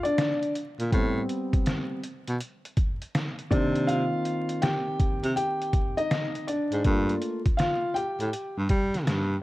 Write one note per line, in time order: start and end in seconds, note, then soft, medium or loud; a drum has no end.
0.03 0.52 D4 medium
0.03 0.51 D5 medium
0.03 closed hi-hat soft
0.18 snare loud
0.18 closed hi-hat medium
0.43 closed hi-hat soft
0.55 closed hi-hat medium
0.80 0.90 A#2 medium
0.80 closed hi-hat medium
0.91 1.22 A2 medium
0.91 1.99 G3 medium
0.91 1.99 B3 soft
0.91 2.00 C4 medium
0.91 kick loud
0.91 closed hi-hat medium
1.29 closed hi-hat medium
1.53 kick loud
1.53 closed hi-hat medium
1.66 snare loud
1.66 closed hi-hat medium
2.04 closed hi-hat medium
2.28 2.38 B2 medium
2.28 closed hi-hat medium
2.40 closed hi-hat medium
2.65 closed hi-hat soft
2.77 kick medium
2.77 closed hi-hat medium
3.02 closed hi-hat soft
3.15 snare loud
3.15 closed hi-hat medium
3.39 closed hi-hat soft
3.51 4.10 C3 medium
3.51 6.43 D#3 medium
3.51 6.44 A#3 soft
3.51 6.44 C4 medium
3.51 3.86 D4 medium
3.51 3.89 D5 medium
3.51 kick loud
3.51 closed hi-hat medium
3.76 closed hi-hat medium
3.87 4.59 F4 medium
3.87 4.64 F5 medium
3.87 closed hi-hat loud
4.25 closed hi-hat medium
4.49 closed hi-hat medium
4.62 5.33 G4 medium
4.62 5.32 G5 loud
4.62 snare loud
4.62 closed hi-hat medium
5.00 kick medium
5.00 closed hi-hat medium
5.24 5.34 C3 medium
5.24 closed hi-hat medium
5.36 5.94 G4 medium
5.36 5.93 G5 loud
5.36 closed hi-hat medium
5.62 closed hi-hat soft
5.73 kick medium
5.73 closed hi-hat medium
5.97 6.45 D#4 medium
5.97 6.44 D#5 loud
5.97 closed hi-hat soft
6.11 snare loud
6.11 closed hi-hat medium
6.35 closed hi-hat soft
6.47 7.18 D4 medium
6.47 7.18 D5 medium
6.47 closed hi-hat medium
6.72 6.83 G#2 medium
6.72 closed hi-hat medium
6.84 7.14 G2 loud
6.84 7.38 A3 medium
6.84 7.38 A#3 soft
6.84 7.38 F4 medium
6.84 kick loud
6.84 closed hi-hat medium
7.09 closed hi-hat soft
7.22 closed hi-hat medium
7.46 kick medium
7.46 closed hi-hat medium
7.57 7.94 F4 medium
7.57 7.96 F5 medium
7.57 snare loud
7.57 closed hi-hat loud
7.94 9.40 G4 medium
7.94 9.42 G5 loud
7.94 closed hi-hat medium
8.20 8.31 A2 medium
8.20 closed hi-hat medium
8.33 closed hi-hat loud
8.58 8.68 G2 medium
8.69 9.09 G3 medium
8.69 kick medium
8.69 closed hi-hat medium
8.94 snare soft
8.94 closed hi-hat soft
9.07 9.37 G2 medium
9.07 snare loud
9.07 closed hi-hat medium